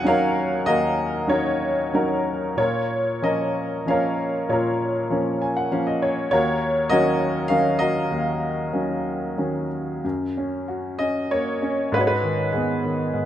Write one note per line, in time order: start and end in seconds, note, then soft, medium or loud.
0.00 0.62 D#2 medium
0.00 0.04 F#3 medium
0.00 0.64 F#3 medium
0.00 0.04 C#4 soft
0.00 0.64 C#4 soft
0.00 0.05 D#4 medium
0.00 2.59 F#5 loud
0.00 2.59 G#5 loud
0.05 0.65 D#4 medium
0.05 0.67 A#4 medium
0.05 0.95 C#5 medium
0.05 0.69 F5 loud
0.66 2.53 D#2 medium
0.66 1.29 F#4 medium
0.66 1.30 A#4 medium
0.66 1.25 D#5 loud
1.27 1.90 F#3 soft
1.27 1.91 C#4 soft
1.27 1.91 D#4 soft
1.27 1.95 F#4 medium
1.27 1.90 C#5 medium
1.31 1.93 A#4 medium
1.93 2.56 F#3 soft
1.93 2.56 C#4 soft
1.93 2.56 D#4 soft
1.93 2.55 F#4 medium
1.93 2.39 A#4 medium
2.57 4.44 A#2 medium
2.57 3.52 F4 medium
2.57 3.24 A#4 soft
2.57 3.24 C#5 medium
3.22 3.84 F3 soft
3.22 3.84 A#3 soft
3.22 3.85 C#4 soft
3.22 3.89 A#4 medium
3.22 3.83 D#5 medium
3.86 4.47 F3 soft
3.86 4.47 A#3 soft
3.86 4.47 C#4 soft
3.86 4.51 F5 medium
3.90 4.51 A#4 medium
3.90 4.48 C#5 medium
4.49 6.27 A#2 medium
4.49 5.99 F4 soft
4.49 5.99 A#4 medium
4.49 5.98 C#5 medium
5.10 5.69 F3 medium
5.10 5.70 A#3 soft
5.10 5.70 C#4 medium
5.42 5.56 G#5 medium
5.57 5.71 F#5 medium
5.71 6.29 F3 soft
5.71 6.29 A#3 soft
5.71 6.30 C#4 medium
5.71 5.86 F5 medium
5.87 6.01 D#5 medium
6.02 6.29 C#5 medium
6.31 8.08 D#2 medium
6.31 6.89 F#4 medium
6.31 6.89 A#4 medium
6.31 6.92 C#5 medium
6.90 7.48 D#3 medium
6.90 7.49 F#3 soft
6.90 7.49 C#4 medium
6.90 7.77 F#4 medium
6.90 7.76 A#4 medium
6.90 7.52 D#5 loud
7.48 8.09 D#3 soft
7.48 8.09 F#3 soft
7.48 8.09 C#4 soft
7.48 7.77 F5 loud
7.79 9.67 F#4 medium
7.79 9.67 A#4 medium
7.79 9.67 D#5 medium
8.11 10.00 D#2 medium
8.73 9.36 D#3 soft
8.73 9.36 F#3 soft
8.73 9.36 C#4 soft
9.38 10.02 D#3 soft
9.38 10.02 F#3 soft
9.38 10.02 C#4 soft
10.04 11.89 F#2 medium
10.37 10.99 C#4 soft
10.68 11.89 F#4 soft
10.99 11.61 C#4 soft
10.99 11.28 D#5 medium
11.31 11.92 A#3 soft
11.31 11.89 C#5 medium
11.62 11.92 C#4 soft
11.92 12.52 G#2 medium
11.92 12.00 B4 medium
11.97 12.81 F#4 medium
11.97 12.07 C#5 medium
12.07 12.50 B4 medium
12.23 12.82 D#3 soft
12.52 13.12 G#2 soft
12.52 13.25 B3 soft
12.52 13.25 G#4 medium
12.84 13.25 D#3 soft
13.14 13.25 G#2 soft